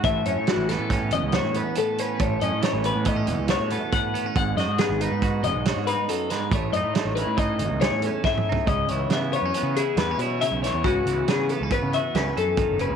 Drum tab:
HH |x--x--x--x--x--x--x--x--x--x--|x--x--x--x--x--x--x--x--x--x--|x--x--x--x--x--x--x--x--x--x--|x--x--x--x--x--x--x--x--------|
SD |------o--o--o-----o-----------|------o-----------o-----------|---o--o-----------o--------o--|------o-----------o-----o-----|
T2 |------------------------------|------------------------------|------------------------------|--------------------------o---|
FT |------------------------------|------------------------------|------------------------------|----------------------------o-|
BD |o-----------o-----------------|o-----------o-----------o-----|o-----------o-----------------|o-----------o-----------o-----|

HH |x--x--x--x--x--x--x--x--x--x--|x--x--x--x--x--x--x--x--x--x--|
SD |------o-----------o--------o--|------o-----------o-----------|
T2 |------------------------------|------------------------------|
FT |------------------------------|------------------------------|
BD |o-----------------------------|o-----------o-----------o-----|